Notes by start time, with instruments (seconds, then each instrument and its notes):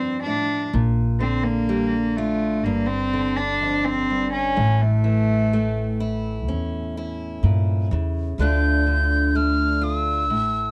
Already playing: upright bass F2, steel-string acoustic guitar G2 F3, cello C4
0.23 steel-string acoustic guitar A2, cello D4
0.73 upright bass A#1, steel-string acoustic guitar A#2
1.20 steel-string acoustic guitar D3, cello C4
1.43 cello A#3
1.69 steel-string acoustic guitar G3
2.16 cello A3, steel-string acoustic guitar F4
2.64 upright bass G1, steel-string acoustic guitar G2, cello A#3
2.87 cello C4
3.13 steel-string acoustic guitar D3
3.36 cello D4
3.62 steel-string acoustic guitar F2
3.85 cello C4
4.10 steel-string acoustic guitar G2
4.33 cello C#4
4.57 upright bass A1, steel-string acoustic guitar A2
4.82 cello A3
5.04 steel-string acoustic guitar E3
5.53 steel-string acoustic guitar A3
6.00 steel-string acoustic guitar E4
6.47 upright bass E2, steel-string acoustic guitar C#4
6.97 steel-string acoustic guitar E4
7.43 upright bass G2, steel-string acoustic guitar A#2
7.91 upright bass E2, steel-string acoustic guitar C#3
8.38 upright bass D2, steel-string acoustic guitar D2 D3 A3 D4, tin whistle G6
8.42 steel-string acoustic guitar F4
8.87 steel-string acoustic guitar D3
9.35 steel-string acoustic guitar A3, tin whistle F6
9.82 steel-string acoustic guitar F4, tin whistle D#6
9.95 tin whistle E6
10.29 upright bass A1, steel-string acoustic guitar A2